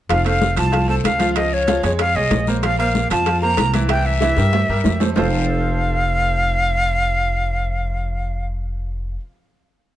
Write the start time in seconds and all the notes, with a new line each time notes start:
0.09 F1 F3 F4 F5, high bongo, high conga, high timbale, long guiro
0.25 A3 A4 C5 F5, high conga, high timbale
0.41 high bongo, high conga, short guiro
0.56 C2 F3 F4 F5 A5, high bongo, high conga, high timbale, short guiro
0.72 F3 F4 F5, high bongo, high conga, high timbale, long guiro
0.88 A3 A4 C5 A5, high bongo, high conga
1.04 C#2 F5, high bongo, low bongo, high conga, high timbale, short guiro
1.19 F3 F4 F5, high bongo, high conga, high timbale, short guiro
1.36 F3 F4 D#5 F5, high bongo, high conga, high timbale, long guiro
1.53 C#5, high conga
1.67 F3 F4 F5, high bongo, high conga, high timbale, short guiro
1.83 F2 G#3 G#4 C#5, high bongo, high conga, high timbale, short guiro
1.99 F5, high bongo, high conga, high timbale, long guiro
2.15 C2 G#3 G#4 C#5 D#5, high conga
2.31 A#1, high bongo, low bongo, high conga, high timbale, low timbale, short guiro
2.46 A#3 A#4 C5, high bongo, high conga, short guiro
2.63 F3 F4 F5, high bongo, high conga, high timbale, long guiro
2.79 A#3 A#4 C5 F5, high conga, high timbale
2.95 high bongo, high conga, short guiro
3.10 F2 F3 F4 F5 A5, high bongo, high conga, high timbale, short guiro
3.26 F3 F4 F5, high bongo, high conga, high timbale, long guiro
3.42 A#3 A#4 C5 A#5, high bongo, high conga
3.57 C2, high bongo, low bongo, high conga, high timbale, short guiro
3.73 E3 E4 E5, high bongo, high conga, high timbale, short guiro
3.89 E3 E4 E5 G5, high bongo, high conga, high timbale, long guiro
4.06 E5, high conga
4.21 E3 E4 E5, high bongo, high conga, high timbale, short guiro
4.36 G2 G3 G4 A#4, high bongo, high conga, high timbale, short guiro
4.53 high bongo, high conga, low timbale, long guiro
4.69 G2 G3 G4 A#4, high conga
4.84 F2, low bongo, high conga, low timbale, short guiro
5.00 A3 A4 C5, low bongo, high conga, low timbale, short guiro
5.16 F1 F3 C4 F4 A4 C5 F5, low bongo, low conga, low timbale, long guiro